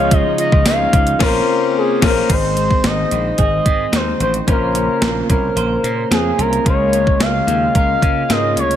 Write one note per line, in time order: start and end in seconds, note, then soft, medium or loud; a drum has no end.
0.00 0.24 C#2 loud
0.00 2.27 C#3 medium
0.00 0.11 F3 medium
0.00 1.17 G#3 medium
0.00 0.66 C#4 medium
0.00 1.16 C#4 medium
0.00 1.18 D#4 medium
0.00 1.20 D#4 medium
0.00 1.18 F4 medium
0.00 1.19 F4 medium
0.00 1.19 C#5 medium
0.00 0.14 F5 loud
0.11 0.37 F3 medium
0.11 0.40 D#5 loud
0.11 kick loud
0.11 closed hi-hat medium
0.38 0.92 F3 medium
0.38 0.65 D#5 loud
0.38 closed hi-hat medium
0.52 0.62 C#2 loud
0.52 kick loud
0.65 0.85 C#2 medium
0.65 1.21 D#4 medium
0.65 1.23 F5 loud
0.65 snare loud
0.65 closed hi-hat medium
0.65 tambourine medium
0.93 1.13 C#2 medium
0.93 1.21 F3 medium
0.93 kick medium
0.93 closed hi-hat medium
1.07 closed hi-hat medium
1.19 1.39 A#1 loud
1.19 1.38 A#3 loud
1.19 2.29 A#3 medium
1.19 2.29 C4 medium
1.19 1.39 C#4 loud
1.19 1.39 F4 loud
1.19 1.76 A#4 medium
1.19 1.40 A#4 loud
1.19 kick loud
1.19 snare loud
1.19 crash medium
1.28 1.44 C5 loud
1.78 2.06 G#4 medium
2.01 2.21 A#1 loud
2.01 2.20 A#3 loud
2.01 2.21 C#4 loud
2.01 2.21 F4 loud
2.01 2.22 A#4 loud
2.01 2.33 A#4 loud
2.01 kick loud
2.01 snare loud
2.01 crash medium
2.10 2.26 C5 loud
2.28 2.69 G#1 loud
2.28 4.45 D#3 medium
2.28 4.43 G#3 medium
2.28 4.45 G#3 medium
2.28 4.44 C4 medium
2.28 2.57 C4 medium
2.28 4.44 D#4 medium
2.28 6.62 C5 medium
2.28 4.44 C5 medium
2.28 2.88 C5 loud
2.28 kick loud
2.28 closed hi-hat medium
2.28 crash medium
2.57 3.11 C4 medium
2.57 closed hi-hat medium
2.71 kick medium
2.84 3.04 G#1 medium
2.84 3.92 D#4 medium
2.84 3.40 D#5 loud
2.84 snare loud
2.84 closed hi-hat medium
3.11 3.31 A#1 medium
3.11 3.66 C4 medium
3.11 closed hi-hat medium
3.38 3.58 G#1 medium
3.38 4.53 G#4 medium
3.38 3.97 D#5 loud
3.38 kick medium
3.38 closed hi-hat medium
3.66 3.85 G#2 medium
3.66 4.20 C4 medium
3.66 kick medium
3.66 closed hi-hat medium
3.92 4.12 D#2 medium
3.92 4.53 D#4 medium
3.92 4.22 C5 medium
3.92 snare loud
3.92 closed hi-hat medium
4.20 4.40 A1 medium
4.20 4.47 C4 medium
4.20 4.34 C5 medium
4.20 closed hi-hat medium
4.34 closed hi-hat medium
4.47 4.87 A#1 loud
4.47 8.76 C#3 medium
4.47 6.62 A#3 medium
4.47 8.76 A#3 medium
4.47 4.75 C#4 medium
4.47 6.62 C#4 medium
4.47 6.62 F4 medium
4.47 5.27 A#4 loud
4.47 6.63 C5 medium
4.47 kick medium
4.47 closed hi-hat medium
4.75 5.29 C#4 medium
4.75 closed hi-hat medium
5.01 5.21 A#1 medium
5.01 6.11 F4 medium
5.01 snare loud
5.01 closed hi-hat medium
5.30 5.49 C2 medium
5.30 5.84 C#4 medium
5.30 6.08 A#4 loud
5.30 kick medium
5.30 closed hi-hat medium
5.56 5.76 A#1 medium
5.56 6.72 C5 medium
5.56 closed hi-hat medium
5.83 6.03 A#2 medium
5.83 6.38 C#4 medium
5.83 closed hi-hat medium
6.11 6.31 F2 medium
6.11 7.20 F4 medium
6.11 6.42 G#4 medium
6.11 snare loud
6.11 closed hi-hat medium
6.38 6.58 C2 medium
6.38 6.93 C#4 medium
6.38 6.67 A#4 loud
6.38 closed hi-hat medium
6.53 closed hi-hat soft
6.64 7.05 C#2 loud
6.64 8.26 G#3 medium
6.64 8.76 G#3 medium
6.64 8.26 C#4 medium
6.64 8.76 F4 medium
6.64 8.27 F4 medium
6.64 8.27 A#4 medium
6.64 7.23 C#5 loud
6.64 kick loud
6.64 closed hi-hat medium
6.93 7.46 C#4 medium
6.93 closed hi-hat medium
7.07 kick medium
7.20 7.40 C#2 loud
7.20 8.28 F4 medium
7.20 7.76 F5 loud
7.20 snare loud
7.20 closed hi-hat medium
7.47 7.67 D#2 medium
7.47 8.01 C#4 medium
7.47 closed hi-hat medium
7.75 7.95 C#2 loud
7.75 8.76 A#4 medium
7.75 8.33 F5 loud
7.75 kick medium
7.75 closed hi-hat medium
8.02 8.22 C#3 medium
8.02 8.55 C#4 medium
8.02 kick medium
8.02 closed hi-hat medium
8.29 8.56 G#2 medium
8.29 8.76 G#3 soft
8.29 8.76 C#4 soft
8.29 8.76 F4 medium
8.29 8.76 F4 soft
8.29 8.76 A#4 soft
8.29 8.58 D#5 loud
8.29 snare loud
8.29 closed hi-hat medium
8.56 8.76 D2 medium
8.56 8.76 C#4 medium
8.56 8.76 C#5 loud
8.56 closed hi-hat medium
8.71 closed hi-hat medium